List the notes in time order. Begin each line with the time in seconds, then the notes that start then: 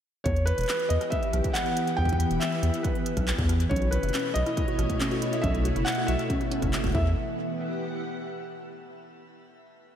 0.24 E2 E3 C#5, kick, closed hi-hat
0.36 closed hi-hat
0.44 B3 B4, closed hi-hat
0.50 G4
0.58 E1, closed hi-hat
0.61 closed hi-hat
0.63 closed hi-hat
0.66 clap, closed hi-hat
0.69 closed hi-hat
0.74 closed hi-hat
0.77 closed hi-hat
0.80 closed hi-hat
0.89 E2 D#5, closed hi-hat
1.01 cross-stick, closed hi-hat
1.10 E5, kick, closed hi-hat
1.23 closed hi-hat
1.33 B1, cross-stick, closed hi-hat
1.44 kick, closed hi-hat
1.53 F#5, clap, closed hi-hat
1.66 closed hi-hat
1.77 closed hi-hat
1.87 closed hi-hat
1.97 E2 G5, kick
2.05 kick, closed hi-hat
2.13 kick
2.20 closed hi-hat
2.31 E1, closed hi-hat
2.40 E5, clap, closed hi-hat
2.52 closed hi-hat
2.63 E2, closed hi-hat
2.74 closed hi-hat
2.83 B4, kick, closed hi-hat
2.95 closed hi-hat
3.06 closed hi-hat
3.17 B1, kick, cross-stick, closed hi-hat
3.28 clap, closed hi-hat
3.38 E2, kick, cross-stick, closed hi-hat
3.49 cross-stick, closed hi-hat
3.60 closed hi-hat
3.69 B1 B2 C#4 C#5, kick
3.76 closed hi-hat
3.82 F#4, closed hi-hat
3.91 A3 E4 B4 C#5, closed hi-hat
4.00 F#1 E4 E5, closed hi-hat
4.09 closed hi-hat
4.14 C#4, clap, closed hi-hat
4.19 closed hi-hat
4.34 B1 F#4 D#5, closed hi-hat
4.46 E4, cross-stick, closed hi-hat
4.57 E4, kick, closed hi-hat
4.68 F#4, closed hi-hat
4.79 A1 F#4, cross-stick, closed hi-hat
4.90 kick, closed hi-hat
5.00 C#4, clap, closed hi-hat
5.11 F#4, closed hi-hat
5.22 E4, closed hi-hat
5.33 E5, closed hi-hat
5.42 B1 C#4 E5, kick, closed hi-hat
5.54 closed hi-hat
5.65 F#4, closed hi-hat
5.76 F#1 E4, closed hi-hat
5.85 E4 F#5, clap, closed hi-hat
5.89 closed hi-hat
5.92 closed hi-hat
5.95 F#4, closed hi-hat
6.07 B1 F#4 E5, closed hi-hat
6.19 cross-stick, closed hi-hat
6.30 C#4, kick, closed hi-hat
6.41 F#4, closed hi-hat
6.51 C#4, closed hi-hat
6.62 F#1 C#4, kick, cross-stick, closed hi-hat
6.73 F#4, clap, closed hi-hat
6.84 F#1 F#4, kick, cross-stick, closed hi-hat
6.87 closed hi-hat
6.89 closed hi-hat
6.92 E2 E3 E4 E5, kick, closed hi-hat
7.01 B3
7.29 G4
7.36 F#5